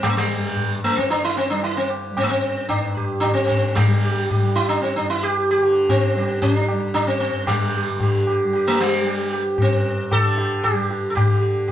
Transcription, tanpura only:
0.00 0.33 G2 medium
0.00 0.92 D3 medium
0.00 1.51 G3 medium
0.34 2.68 G2 medium
0.92 3.25 D3 medium
1.51 2.10 G3 medium
2.10 3.84 G3 medium
2.68 4.98 G2 medium
3.26 5.57 D3 medium
3.84 4.41 G3 medium
4.41 6.15 G3 medium
4.98 7.29 G2 medium
5.57 7.86 D3 medium
6.15 6.72 G3 medium
6.72 8.44 G3 medium
7.30 9.57 G2 medium
7.87 10.15 D3 medium
8.44 9.01 G3 medium
9.01 10.72 G3 medium
9.58 11.72 G2 medium
10.16 11.17 D3 medium
10.72 11.72 G3 medium
11.17 11.72 D3 medium

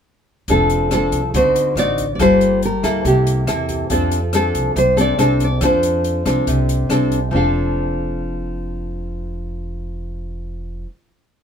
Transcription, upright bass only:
0.48 1.08 F1 medium
1.12 1.32 C2 medium
1.34 1.74 D2 medium
1.75 2.16 A1 medium
2.19 2.79 G1 medium
2.83 3.03 D2 medium
3.05 3.45 C2 medium
3.47 3.87 E2 medium
3.90 4.50 F2 medium
4.55 4.74 C2 medium
4.76 5.16 C2 medium
5.18 5.58 C2 medium
5.61 6.21 F2 medium
6.25 6.45 C2 medium
6.47 6.87 C2 medium
6.89 7.29 C2 medium
7.33 10.84 F1 medium

